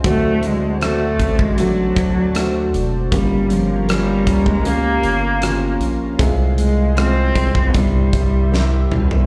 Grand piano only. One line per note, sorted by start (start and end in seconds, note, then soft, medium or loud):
0.04 1.16 A2 medium
0.04 0.77 F#3 medium
0.04 0.78 C4 medium
0.04 0.78 D4 medium
0.04 0.78 F#4 medium
0.81 1.54 A3 medium
0.81 1.54 C4 medium
0.81 1.55 D4 medium
0.81 1.55 F#4 medium
1.58 2.31 A3 medium
1.58 2.31 C4 medium
1.58 2.31 D4 medium
1.58 2.32 F#4 medium
2.34 3.08 A3 medium
2.34 3.08 C4 medium
2.34 3.08 D4 medium
2.34 3.09 F#4 medium
3.12 4.23 G2 medium
3.12 4.23 G3 medium
3.12 3.85 A#3 medium
3.12 3.85 C#4 medium
3.12 3.85 F4 medium
3.12 3.86 G4 medium
3.88 4.61 A#3 medium
3.88 4.61 C#4 medium
3.88 4.62 F4 medium
3.88 4.62 G4 medium
4.64 5.38 A#3 medium
4.64 5.38 C#4 medium
4.64 5.38 F4 medium
4.64 5.38 G4 medium
5.41 6.15 A#3 medium
5.41 6.15 C#4 medium
5.41 6.16 F4 medium
5.41 6.16 A#4 medium
6.19 7.32 C3 medium
6.19 6.93 G#3 loud
6.19 6.93 C4 medium
6.19 6.93 F4 medium
6.19 6.94 G#4 loud
6.96 7.70 G#3 medium
6.96 7.70 C4 medium
6.96 7.71 F4 medium
6.96 7.71 G#4 medium
7.74 8.88 G2 medium
7.74 8.48 G3 medium
7.74 8.48 C4 medium
7.74 8.49 E4 medium
7.74 8.49 G4 medium
8.52 9.26 G3 medium
8.52 9.26 C4 medium
8.52 9.26 E4 medium
8.52 9.26 A#4 medium